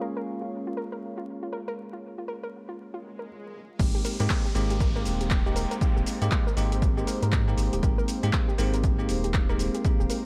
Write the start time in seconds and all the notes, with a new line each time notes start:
Already playing: G#3 A#3 C#4 F4 G#4 A#4 C#5 F5
0.01 A#4
0.17 A#4
0.42 F4
0.67 F4
0.77 A#4
0.92 A#4
1.18 F4
1.43 F4
1.53 A#4
1.68 A#4
1.93 F4
2.18 F4
2.28 A#4
2.43 A#4
2.69 F4
2.79 swell
2.94 F4
3.19 A#4
3.79 G#1 G#3 A#3 C4 D#4 G4 A#4 C5, kick, closed hi-hat, crash, downlifter, shaker
3.95 G4, shaker
4.05 A#4, open hi-hat, shaker
4.12 G5
4.20 G#2 G#3 A#3 C4 D#4 G4 A#4, closed hi-hat, shaker
4.30 kick, clap, closed hi-hat, shaker
4.45 G4, shaker
4.55 G#1 G#3 A#3 C4 D#4 G4, open hi-hat, shaker
4.70 G4, closed hi-hat, shaker
4.80 A#4, kick, closed hi-hat, shaker
4.95 G#3 A#3 C4 D#4 G4 A#4, shaker
5.05 D#1, open hi-hat, shaker
5.21 G4, closed hi-hat, shaker
5.31 kick, clap, closed hi-hat, shaker
5.46 G#3 A#3 C4 D#4 G4, shaker
5.56 A#4, open hi-hat, shaker
5.71 A#4, closed hi-hat, shaker
5.81 G#3 A#3 C4 D#4 G4, kick, closed hi-hat, shaker
5.96 D#1 G4, shaker
6.06 open hi-hat, shaker
6.21 G#2 G#3 A#3 C4 D#4 G4, closed hi-hat, shaker
6.31 A#4, kick, clap, closed hi-hat, shaker
6.47 A#4, shaker
6.56 G#1 G#3 A#3 C4 D#4 G4, open hi-hat, shaker
6.72 G4, closed hi-hat, shaker
6.82 kick, closed hi-hat, shaker
6.97 G#3 A#3 C4 D#4 G4, shaker
7.07 A#4, open hi-hat, shaker
7.22 G#2 A#4, closed hi-hat, shaker
7.32 kick, clap, closed hi-hat, shaker
7.47 G#3 A#3 C4 D#4 G4 F5, shaker
7.58 G#1, open hi-hat, shaker
7.73 D#1 G4, closed hi-hat, shaker
7.82 G#1 G#3 A#3 C4 D#4 G4 A#4, kick, closed hi-hat, shaker
7.98 A#4, shaker
8.08 open hi-hat, shaker
8.23 G#2 G#3 A#3 C4 D#4 G4, closed hi-hat, shaker
8.33 kick, clap, closed hi-hat, shaker
8.48 G4, shaker
8.58 G#1 G#3 A#3 C4 D#4 G4 A#4, open hi-hat, shaker
8.74 A#4, closed hi-hat, shaker
8.84 kick, closed hi-hat, shaker
8.99 G#3 A#3 C4 D#4 G4, shaker
9.09 D#1, open hi-hat, shaker
9.24 G4, closed hi-hat, shaker
9.34 A#4, kick, clap, closed hi-hat, shaker
9.49 G#3 A#3 C4 D#4 G4 A#4, shaker
9.59 open hi-hat, shaker
9.75 G4, closed hi-hat, shaker
9.84 G#3 A#3 C4 D#4 G4, kick, closed hi-hat, shaker
10.00 D#1 G4, shaker
10.10 A#4, open hi-hat, shaker